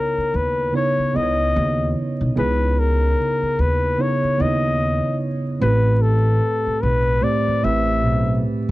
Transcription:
Already playing: C#3 B3 D#4 E4 A#4 C#5
0.18 muted upright bass stroke
0.34 D#2 B4
0.73 C#3 B3 D#4 E4 C#5
0.99 muted upright bass stroke
1.13 C#2 C#3 B3 E4 D#5
1.23 C#5
1.56 D#2
2.21 B1
2.35 C#2 C#3 B3 D#4 E4 G#4 B4
2.79 A#4
3.42 muted upright bass stroke
3.59 D#2 B4
3.98 C#3 B3 D#4 E4 C#5
4.23 muted upright bass stroke
4.38 D#2 C#3 B3 D#4 E4 C#5 D#5
5.60 A1 A2 A3 C4 G4 B4
6.02 A4
6.67 muted upright bass stroke
6.82 B1 B4
7.21 A2 A3 C4 G4 C5 D5
7.48 muted upright bass stroke
7.62 A1 A2 A3 C4 G4 B4 E5
8.05 B1

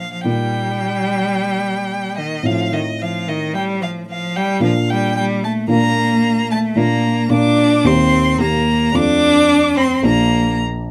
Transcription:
Already playing: A#2 A#3 D4 F4
0.00 F5
0.12 F3 F5
0.24 A#2 G3 A#3 D#4 G5
2.17 D#3 D#5
2.43 A2 F3 C4 D#4 F4 F5
2.72 D#3 D#5
3.00 F3 F5
3.28 D#3 D#5
3.54 G3 G5
3.81 F3 F5
4.09 F3 F5
4.36 G3 G5
4.60 A#2 F3 A#3 D4 F4 F5
4.90 G3 G5
5.16 G3 G5
5.44 A3 A5
5.68 A#2 A#3 D4 F4 A#5
6.51 A3 A5
6.76 A#2 A#3 D4 F4 A#5
7.30 A#2 A#3 D4 F4 D6
7.84 D#2 A#3 C4 D#4 G4 C6
8.38 D#2 A#3 D#4 G4 A#5
8.93 F2 A3 C4 D4 F4 D6
9.77 C4 C6
10.02 A#1 A#3 D4 F4 A#5

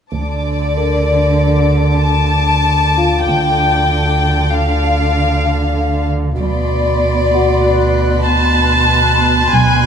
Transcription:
0.13 D2 D3 D5 A5 D6
0.77 A#4
2.03 A5
2.97 F4 F5
3.26 D2 D3 G5
4.52 F5
4.85 F5
6.38 B1 D2 B2 D5 B5 C6
7.35 F#4 F#5
7.66 F#6
8.26 A5
9.52 B1 D2 B2 G#5

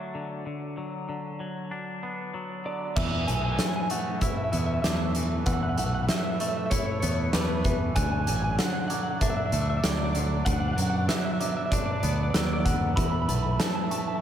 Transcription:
Already playing: D3 F#3 A3 D4
0.15 D3
0.46 D3
0.77 F#3
1.09 D3
1.40 F#3
1.71 D4
2.03 B3
2.34 F#3
2.65 D3 D5
2.96 E2 E3 A3 B3 A4 B4 E5 E6, kick, crash
3.28 B1 A3 G#5, closed hi-hat
3.35 G#5
3.44 G#5
3.52 G#5
3.59 E3 G#5, snare, closed hi-hat
3.69 G#5
3.76 G#5
3.82 G#5
3.90 A3 F#5 C#6, closed hi-hat
4.21 E4 E5, kick, closed hi-hat
4.29 E5
4.37 E5
4.44 E5
4.52 E2 B3 E5, closed hi-hat
4.60 E5
4.66 E5
4.74 E5
4.82 E2 A3 E5 D6, snare, closed hi-hat
4.90 E5
4.97 E5
5.04 E5
5.15 E3, closed hi-hat
5.46 E2 E3 F#5 E6, kick, closed hi-hat
5.54 F#5
5.63 F#5
5.69 F#5
5.78 B1 A3 F#5, closed hi-hat
5.86 F#5
5.95 F#5
6.03 F#5
6.08 E3 E5, snare, closed hi-hat
6.16 E5
6.25 E5
6.32 E5
6.40 A3 E5 C#6, closed hi-hat
6.48 E5
6.57 E5
6.66 E5
6.70 E4 C#5, kick, closed hi-hat
6.77 C#5
6.86 C#5
6.92 C#5
7.00 E2 B3 C#5, closed hi-hat
7.09 C#5
7.14 C#5
7.22 C#5
7.33 E2 A3 B4 D6, snare, closed hi-hat
7.41 B4
7.48 B4
7.55 B4
7.62 E3 B4, kick, closed hi-hat
7.69 B4
7.94 D2 D3 F#3 D4 D5 G#5 F#6, kick, closed hi-hat
8.04 G#5
8.12 G#5
8.20 G#5
8.27 A1 F#3 G#5, closed hi-hat
8.36 G#5
8.44 G#5
8.52 G#5
8.58 D3 F#5, snare, closed hi-hat
8.66 F#5
8.73 F#5
8.81 F#5
8.88 F#3 F#5 D6, closed hi-hat
8.94 F#5
9.03 F#5
9.10 F#5
9.21 D4 E5, kick, closed hi-hat
9.30 E5
9.37 E5
9.46 E5
9.52 D2 A3 E5, closed hi-hat
9.62 E5
9.70 E5
9.77 E5
9.83 D2 F#3 D5 D6, snare, closed hi-hat
9.91 D5
9.98 D5
10.04 D5
10.13 D3 D5, closed hi-hat
10.20 D5
10.45 D2 D3 B3 B4 F#5 F#6, kick, closed hi-hat
10.53 F#5
10.60 F#5
10.68 F#5
10.73 F#5
10.77 F#2 F#3, closed hi-hat
10.82 F#5
10.90 F#5
10.98 F#5
11.08 D3 E5, snare, closed hi-hat
11.16 E5
11.25 E5
11.33 E5
11.40 F#3 E5 D6, closed hi-hat
11.49 E5
11.57 E5
11.65 E5
11.71 D4 D5, kick, closed hi-hat
11.78 D5
11.86 D5
11.93 D5
12.00 D2 B3 D5, closed hi-hat
12.08 D5
12.16 D5
12.23 D5
12.30 D5 E6
12.34 D#2 F#3 D5, snare, closed hi-hat
12.46 D5
12.53 D5
12.60 D5
12.65 D3 F#5, kick, closed hi-hat
12.96 E2 E3 A3 E4 E5 B5 E6, kick, closed hi-hat
13.04 B5
13.12 B5
13.22 B5
13.28 B1 A3 B5, closed hi-hat
13.37 B5
13.44 B5
13.53 B5
13.59 E3 A5, snare, closed hi-hat
13.68 A5
13.75 A5
13.84 A5
13.91 A3 A5 C#6, closed hi-hat
14.00 A5
14.08 A5
14.16 A5

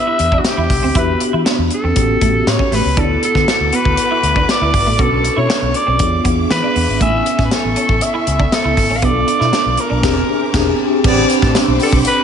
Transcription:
Already playing: B3 D4 E4 G4 E5
0.07 E4
0.19 E2, muted clean electric guitar stroke, closed hi-hat
0.32 D4, kick
0.39 F#4
0.45 G4, snare, closed hi-hat
0.57 E2 E4
0.70 C2, muted clean electric guitar stroke, kick, snare, open hi-hat
0.83 D2 C4
0.94 E2 B3 D4 E4 F#4 G4 B4, kick, closed hi-hat
1.20 muted clean electric guitar stroke, closed hi-hat
1.33 E3 E4
1.45 D4, snare, closed hi-hat
1.58 E2
1.71 A4, muted clean electric guitar stroke, closed hi-hat
1.84 E2 C4
1.95 A1 B3 C#4 F#4 G4, kick, closed hi-hat
2.21 A1 A3, kick, closed hi-hat
2.47 A2 C#5, muted clean electric guitar stroke, snare, closed hi-hat
2.59 C#4, kick
2.72 A1 A3 B4, snare, open hi-hat
2.85 C#2
2.96 D2 B3 D4 E4 F#4 A4 B4 F#5 A5 D6, kick, closed hi-hat
3.22 A4, muted clean electric guitar stroke, closed hi-hat
3.35 D3 B3, kick, snare
3.48 A4, snare, closed hi-hat
3.60 D2
3.73 B3 B4, closed hi-hat
3.85 D2, kick
3.97 closed hi-hat
4.11 E4
4.23 D2, muted clean electric guitar stroke, closed hi-hat
4.36 D4, kick
4.49 D5, snare, closed hi-hat
4.61 D2 E4
4.74 G1, muted clean electric guitar stroke, kick, open hi-hat
4.86 A1 A3
4.98 B1 B3 C#4 D4 F#4 A4 C#5 C#6, kick, closed hi-hat
5.24 muted clean electric guitar stroke, closed hi-hat
5.36 B2 E4 C#5
5.49 D4, snare, closed hi-hat
5.62 B1
5.74 D5, muted clean electric guitar stroke, closed hi-hat
5.87 B1 C4
5.99 E2 B3 D4 F4 G#4 E5 F5 D6, kick, closed hi-hat
6.24 E2 B3, kick, closed hi-hat
6.50 E3 B4, muted clean electric guitar stroke, snare, closed hi-hat
6.63 D4
6.75 E2 B3, open hi-hat
6.89 G#1
7.00 A1 A3 B3 C#4 E4 A4 E5 G#5 C#6, kick, closed hi-hat
7.26 muted clean electric guitar stroke, closed hi-hat
7.38 A2 C#4, kick, snare
7.45 B4
7.51 A4, snare, closed hi-hat
7.64 A1
7.76 C#4, closed hi-hat
7.89 A1, kick
8.01 E5, closed hi-hat
8.14 E4
8.27 C#2, muted clean electric guitar stroke, closed hi-hat
8.39 D4, kick
8.52 A4, snare, closed hi-hat
8.64 C#2 E4
8.77 G#1, muted clean electric guitar stroke, kick, snare, open hi-hat
8.90 A1 C#4
8.97 F5
9.02 B1 B3 D4 F4 G4 B4 D5 F5 A5 D6, kick, closed hi-hat
9.10 A4
9.27 muted clean electric guitar stroke, closed hi-hat
9.40 B2 E4, snare
9.52 D4, snare, closed hi-hat
9.66 B1
9.77 A#4, muted clean electric guitar stroke, closed hi-hat
9.90 B1 D4
10.02 E1 C4 D4 G4 G#4 C5 E5 G#5, kick, snare, crash
10.53 E1 C4 D4 G4 G#4, kick, snare, crash
11.03 A1 B3 C4 D4 G4 C5 D5 G5 B5 D6, kick, crash
11.30 closed hi-hat
11.42 A2 E3 D4 A4, kick, snare
11.55 snare, closed hi-hat
11.68 B1 G3 E4 C5
11.80 B3 G4 A4 D5, open hi-hat
11.93 B1, kick
12.05 B4, closed hi-hat

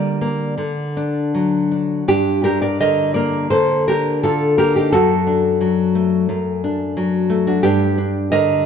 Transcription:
Already playing: D3 G3 A#3 A#4 D5
0.21 A#3
0.58 D3
0.97 D4
1.34 F#3
1.72 D4
2.08 G2 D4 G4
2.44 D4 G4 A#4
2.62 A#4 D5
2.80 D3 A#4 D#5
3.14 A#3 A#4 D5
3.50 D3 A4 C5
3.88 D4 G4 A#4
4.23 D3 F4 A4
4.58 A#3 G4 A#4
4.76 D#4 G4
4.92 F#2 F#4 A4
5.27 D4
5.61 F#3
5.95 A3
6.29 F#2
6.64 D4
6.97 F#3
7.30 A3
7.47 D4 F#4
7.63 G2 D4 G4
7.98 D4
8.32 D3 A#4 D#5

